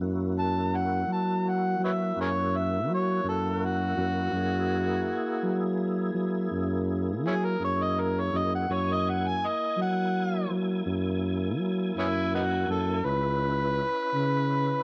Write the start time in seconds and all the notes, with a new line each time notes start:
0.00 F#2 A#3 E4 F#4
0.39 A5
0.77 F#5
1.07 F#3
1.12 A5
1.49 F#5
1.79 F#3
1.85 B4 C#5 E5
2.16 F#2
2.21 G#4 A#4 C#5
2.57 E5
2.89 F#3
2.94 C#5
3.24 F#2
3.29 A4
3.65 F#4
3.97 F#2
4.32 F#2 A#3 E4 G#4
5.44 F#3
6.14 F#3
6.51 F#2
7.25 F#3 C#4 E4 G#4
7.45 A#4
7.60 F#2
7.64 C#5
7.83 D#5
8.01 A#4
8.21 C#5
8.33 F#2
8.38 D#5
8.55 F#5
8.69 F#2 A#3 E4 C#5 G#5
8.93 D#5
9.10 F#5
9.27 G#5
9.47 D#5
9.77 F#3
9.82 F#5
10.50 F#3
10.86 F#2
11.58 F#3
11.95 F#2 B3 C#4 E4
12.35 B3 D#4 F#4
12.68 F#2 A4
13.03 C#2 C#4 E4 B4
14.13 C#3